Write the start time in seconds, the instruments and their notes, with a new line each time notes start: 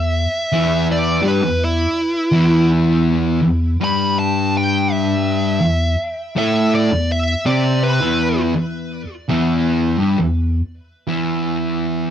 Already playing: distorted electric guitar E2, lead electric guitar E5
0.52 distorted electric guitar E2 E3
0.92 lead electric guitar D5
1.22 distorted electric guitar G2 G3
1.28 lead electric guitar B4
1.43 distorted electric guitar E2
1.64 lead electric guitar E4
2.32 distorted electric guitar E2 E3
3.42 distorted electric guitar E2
3.81 distorted electric guitar G2 G3, lead electric guitar B5
4.19 lead electric guitar A5
4.57 lead electric guitar G5
4.92 lead electric guitar E5
5.61 distorted electric guitar E2
6.36 distorted electric guitar A2 A3, lead electric guitar E5
6.75 lead electric guitar D5
6.92 distorted electric guitar E2
7.12 lead electric guitar E5
7.46 distorted electric guitar C3 C4, lead electric guitar D5
7.83 lead electric guitar B4
8.00 distorted electric guitar E2 E3
8.55 distorted electric guitar E2
9.29 distorted electric guitar E2 E3
9.99 distorted electric guitar G2 G3
10.18 distorted electric guitar E2
11.07 distorted electric guitar E2 E3